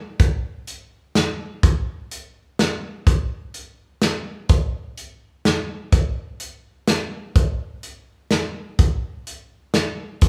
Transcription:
0, 0, Header, 1, 2, 480
1, 0, Start_track
1, 0, Tempo, 477707
1, 195, Time_signature, 3, 2, 24, 8
1, 10335, End_track
2, 0, Start_track
2, 0, Title_t, "Drums"
2, 197, Note_on_c, 9, 42, 55
2, 198, Note_on_c, 9, 36, 110
2, 297, Note_off_c, 9, 42, 0
2, 299, Note_off_c, 9, 36, 0
2, 677, Note_on_c, 9, 42, 58
2, 778, Note_off_c, 9, 42, 0
2, 1159, Note_on_c, 9, 38, 86
2, 1159, Note_on_c, 9, 42, 62
2, 1260, Note_off_c, 9, 38, 0
2, 1260, Note_off_c, 9, 42, 0
2, 1641, Note_on_c, 9, 36, 112
2, 1641, Note_on_c, 9, 42, 72
2, 1741, Note_off_c, 9, 36, 0
2, 1741, Note_off_c, 9, 42, 0
2, 2125, Note_on_c, 9, 42, 63
2, 2225, Note_off_c, 9, 42, 0
2, 2605, Note_on_c, 9, 38, 82
2, 2605, Note_on_c, 9, 42, 58
2, 2706, Note_off_c, 9, 38, 0
2, 2706, Note_off_c, 9, 42, 0
2, 3082, Note_on_c, 9, 36, 110
2, 3084, Note_on_c, 9, 42, 57
2, 3182, Note_off_c, 9, 36, 0
2, 3184, Note_off_c, 9, 42, 0
2, 3559, Note_on_c, 9, 42, 54
2, 3659, Note_off_c, 9, 42, 0
2, 4035, Note_on_c, 9, 38, 80
2, 4035, Note_on_c, 9, 42, 59
2, 4135, Note_off_c, 9, 38, 0
2, 4135, Note_off_c, 9, 42, 0
2, 4514, Note_on_c, 9, 42, 60
2, 4517, Note_on_c, 9, 36, 117
2, 4614, Note_off_c, 9, 42, 0
2, 4617, Note_off_c, 9, 36, 0
2, 4999, Note_on_c, 9, 42, 59
2, 5100, Note_off_c, 9, 42, 0
2, 5479, Note_on_c, 9, 38, 92
2, 5479, Note_on_c, 9, 42, 59
2, 5580, Note_off_c, 9, 38, 0
2, 5580, Note_off_c, 9, 42, 0
2, 5953, Note_on_c, 9, 36, 112
2, 5953, Note_on_c, 9, 42, 70
2, 6053, Note_off_c, 9, 42, 0
2, 6054, Note_off_c, 9, 36, 0
2, 6431, Note_on_c, 9, 42, 68
2, 6531, Note_off_c, 9, 42, 0
2, 6908, Note_on_c, 9, 38, 85
2, 6908, Note_on_c, 9, 42, 67
2, 7009, Note_off_c, 9, 38, 0
2, 7009, Note_off_c, 9, 42, 0
2, 7391, Note_on_c, 9, 42, 58
2, 7392, Note_on_c, 9, 36, 115
2, 7492, Note_off_c, 9, 36, 0
2, 7492, Note_off_c, 9, 42, 0
2, 7870, Note_on_c, 9, 42, 56
2, 7970, Note_off_c, 9, 42, 0
2, 8346, Note_on_c, 9, 38, 78
2, 8346, Note_on_c, 9, 42, 59
2, 8446, Note_off_c, 9, 38, 0
2, 8446, Note_off_c, 9, 42, 0
2, 8830, Note_on_c, 9, 42, 62
2, 8832, Note_on_c, 9, 36, 110
2, 8931, Note_off_c, 9, 42, 0
2, 8932, Note_off_c, 9, 36, 0
2, 9314, Note_on_c, 9, 42, 61
2, 9415, Note_off_c, 9, 42, 0
2, 9784, Note_on_c, 9, 38, 83
2, 9784, Note_on_c, 9, 42, 61
2, 9885, Note_off_c, 9, 38, 0
2, 9885, Note_off_c, 9, 42, 0
2, 10263, Note_on_c, 9, 42, 62
2, 10268, Note_on_c, 9, 36, 111
2, 10335, Note_off_c, 9, 36, 0
2, 10335, Note_off_c, 9, 42, 0
2, 10335, End_track
0, 0, End_of_file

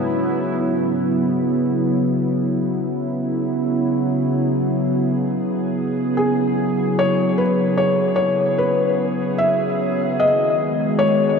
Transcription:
0, 0, Header, 1, 3, 480
1, 0, Start_track
1, 0, Key_signature, 4, "major"
1, 0, Tempo, 808625
1, 375, Time_signature, 3, 2, 24, 8
1, 1333, Tempo, 790514
1, 5173, Tempo, 806452
1, 6855, End_track
2, 0, Start_track
2, 0, Title_t, "Felt piano"
2, 0, Program_c, 0, 0
2, 3717, Note_on_c, 0, 68, 78
2, 4212, Note_on_c, 0, 73, 94
2, 4219, Note_off_c, 0, 68, 0
2, 4449, Note_on_c, 0, 71, 79
2, 4459, Note_off_c, 0, 73, 0
2, 4690, Note_on_c, 0, 73, 88
2, 4699, Note_off_c, 0, 71, 0
2, 4914, Note_off_c, 0, 73, 0
2, 4923, Note_on_c, 0, 73, 86
2, 5177, Note_off_c, 0, 73, 0
2, 5181, Note_on_c, 0, 71, 76
2, 5635, Note_off_c, 0, 71, 0
2, 5657, Note_on_c, 0, 76, 86
2, 6141, Note_on_c, 0, 75, 92
2, 6154, Note_off_c, 0, 76, 0
2, 6612, Note_on_c, 0, 73, 85
2, 6631, Note_off_c, 0, 75, 0
2, 6855, Note_off_c, 0, 73, 0
2, 6855, End_track
3, 0, Start_track
3, 0, Title_t, "Ambient pad"
3, 0, Program_c, 1, 92
3, 0, Note_on_c, 1, 44, 76
3, 0, Note_on_c, 1, 49, 79
3, 0, Note_on_c, 1, 54, 82
3, 0, Note_on_c, 1, 59, 87
3, 0, Note_on_c, 1, 64, 92
3, 0, Note_on_c, 1, 80, 78
3, 374, Note_off_c, 1, 80, 0
3, 375, Note_off_c, 1, 44, 0
3, 1873, Note_on_c, 1, 68, 74
3, 6129, Note_on_c, 1, 51, 72
3, 6133, Note_off_c, 1, 49, 0
3, 6135, Note_off_c, 1, 64, 0
3, 6139, Note_off_c, 1, 54, 0
3, 6219, Note_on_c, 1, 56, 78
3, 6353, Note_on_c, 1, 66, 73
3, 6638, Note_on_c, 1, 61, 69
3, 6707, Note_off_c, 1, 68, 0
3, 6773, Note_on_c, 1, 71, 82
3, 6855, Note_off_c, 1, 51, 0
3, 6855, Note_off_c, 1, 56, 0
3, 6855, Note_off_c, 1, 59, 0
3, 6855, Note_off_c, 1, 61, 0
3, 6855, Note_off_c, 1, 66, 0
3, 6855, Note_off_c, 1, 71, 0
3, 6855, End_track
0, 0, End_of_file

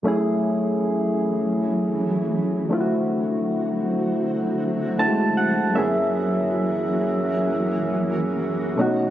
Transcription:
0, 0, Header, 1, 3, 480
1, 0, Start_track
1, 0, Tempo, 759494
1, 29, Time_signature, 4, 2, 24, 8
1, 5752, End_track
2, 0, Start_track
2, 0, Title_t, "Synth keys"
2, 0, Program_c, 0, 88
2, 19, Note_on_c, 0, 42, 68
2, 27, Note_on_c, 0, 57, 62
2, 35, Note_on_c, 0, 61, 60
2, 43, Note_on_c, 0, 64, 60
2, 51, Note_on_c, 0, 68, 76
2, 129, Control_c, 0, 64, 127
2, 1679, Note_off_c, 0, 42, 0
2, 1683, Note_off_c, 0, 57, 0
2, 1687, Note_off_c, 0, 61, 0
2, 1690, Note_off_c, 0, 64, 0
2, 1695, Note_off_c, 0, 68, 0
2, 1701, Note_on_c, 0, 50, 68
2, 1708, Note_on_c, 0, 57, 63
2, 1716, Note_on_c, 0, 60, 62
2, 1718, Control_c, 0, 64, 0
2, 1724, Note_on_c, 0, 64, 63
2, 1732, Note_on_c, 0, 65, 59
2, 1761, Note_off_c, 0, 65, 0
2, 1773, Note_on_c, 0, 66, 72
2, 1815, Control_c, 0, 64, 127
2, 3119, Note_off_c, 0, 50, 0
2, 3123, Note_off_c, 0, 57, 0
2, 3127, Note_off_c, 0, 60, 0
2, 3131, Note_off_c, 0, 64, 0
2, 3148, Note_on_c, 0, 50, 53
2, 3151, Note_on_c, 0, 57, 47
2, 3155, Note_on_c, 0, 60, 51
2, 3156, Note_off_c, 0, 66, 0
2, 3156, Note_on_c, 0, 81, 69
2, 3159, Note_on_c, 0, 64, 47
2, 3164, Note_on_c, 0, 66, 46
2, 3197, Note_off_c, 0, 66, 0
2, 3204, Note_on_c, 0, 56, 61
2, 3376, Note_off_c, 0, 81, 0
2, 3396, Note_on_c, 0, 78, 66
2, 3616, Note_off_c, 0, 78, 0
2, 3622, Note_on_c, 0, 42, 72
2, 3629, Note_off_c, 0, 50, 0
2, 3629, Note_on_c, 0, 58, 60
2, 3630, Note_off_c, 0, 57, 0
2, 3632, Note_off_c, 0, 60, 0
2, 3634, Note_off_c, 0, 64, 0
2, 3637, Note_on_c, 0, 61, 63
2, 3637, Note_on_c, 0, 76, 67
2, 3638, Control_c, 0, 64, 0
2, 3645, Note_on_c, 0, 64, 60
2, 3652, Note_on_c, 0, 68, 72
2, 3656, Note_off_c, 0, 56, 0
2, 3746, Control_c, 0, 64, 127
2, 3856, Note_off_c, 0, 76, 0
2, 5520, Note_off_c, 0, 42, 0
2, 5524, Note_off_c, 0, 58, 0
2, 5527, Note_off_c, 0, 61, 0
2, 5532, Note_off_c, 0, 64, 0
2, 5535, Note_off_c, 0, 68, 0
2, 5539, Note_on_c, 0, 47, 69
2, 5547, Note_on_c, 0, 57, 62
2, 5554, Note_on_c, 0, 61, 65
2, 5556, Control_c, 0, 64, 0
2, 5562, Note_on_c, 0, 63, 65
2, 5570, Note_on_c, 0, 66, 73
2, 5679, Control_c, 0, 64, 127
2, 5752, Note_off_c, 0, 47, 0
2, 5752, Note_off_c, 0, 57, 0
2, 5752, Note_off_c, 0, 61, 0
2, 5752, Note_off_c, 0, 63, 0
2, 5752, Note_off_c, 0, 66, 0
2, 5752, End_track
3, 0, Start_track
3, 0, Title_t, "Ambient pad"
3, 0, Program_c, 1, 92
3, 27, Note_on_c, 1, 57, 70
3, 28, Note_on_c, 1, 52, 72
3, 28, Note_on_c, 1, 54, 70
3, 28, Note_on_c, 1, 66, 79
3, 29, Note_on_c, 1, 61, 69
3, 1691, Note_off_c, 1, 52, 0
3, 1691, Note_off_c, 1, 57, 0
3, 1692, Note_off_c, 1, 54, 0
3, 1692, Note_off_c, 1, 61, 0
3, 1710, Note_on_c, 1, 54, 69
3, 1711, Note_on_c, 1, 60, 70
3, 1712, Note_on_c, 1, 50, 75
3, 3611, Note_off_c, 1, 50, 0
3, 3611, Note_off_c, 1, 60, 0
3, 3631, Note_on_c, 1, 52, 72
3, 3631, Note_on_c, 1, 58, 67
3, 3631, Note_on_c, 1, 61, 73
3, 5524, Note_off_c, 1, 54, 0
3, 5531, Note_off_c, 1, 52, 0
3, 5531, Note_off_c, 1, 58, 0
3, 5531, Note_off_c, 1, 61, 0
3, 5551, Note_on_c, 1, 57, 70
3, 5551, Note_on_c, 1, 59, 70
3, 5552, Note_on_c, 1, 51, 73
3, 5552, Note_on_c, 1, 54, 69
3, 5752, Note_off_c, 1, 51, 0
3, 5752, Note_off_c, 1, 54, 0
3, 5752, Note_off_c, 1, 57, 0
3, 5752, Note_off_c, 1, 59, 0
3, 5752, Note_off_c, 1, 66, 0
3, 5752, End_track
0, 0, End_of_file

